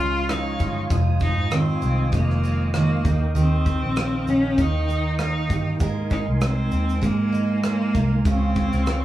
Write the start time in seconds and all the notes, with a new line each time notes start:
Already playing: C#2 C#3 F3 G#3 F4 F5 G#5 C#6
0.00 C#4, shaker
0.29 F3 D#4, cross-stick, shaker
0.60 G1 F4, kick, shaker
0.90 F1 F2 F4 C5 D#6, kick, shaker
1.20 D#4, kick, shaker
1.38 G#1
1.51 D#3 C4, cross-stick, shaker
1.82 C2 G#3, shaker
2.12 F1 F2 A#3, kick, shaker
2.30 cross-stick
2.43 C4, shaker
2.74 D#3 A#3, cross-stick, shaker
3.03 D#2 D#3 D#4 A#4 G5, kick, shaker
3.35 D#2 D#3 C4 G4, shaker
3.66 kick, shaker
3.83 A#1
3.96 A#3, cross-stick, shaker
4.27 A#1 A#3 C#4, shaker
4.58 D#2 D#3 D#4, kick, shaker
4.89 D#4, shaker
5.19 A#3 D#4, cross-stick, shaker
5.50 G1 G4, kick, shaker
5.80 G#1 G#3 D#4 A#4 G#5 C6, kick, shaker
6.10 D#4, kick, shaker
6.28 C2
6.41 C4, cross-stick, shaker
6.71 D#2 C4, shaker
6.89 shaker
7.01 G#1 G#3 A#3, kick, shaker
7.32 D#4, shaker
7.63 A#3 C4, cross-stick, shaker
7.95 C2 A#4, kick, shaker
8.25 C#2 C#3 C4 F4 F5 C#6, kick, shaker
8.55 kick, shaker
8.72 C#2, shaker
8.87 F3, cross-stick, shaker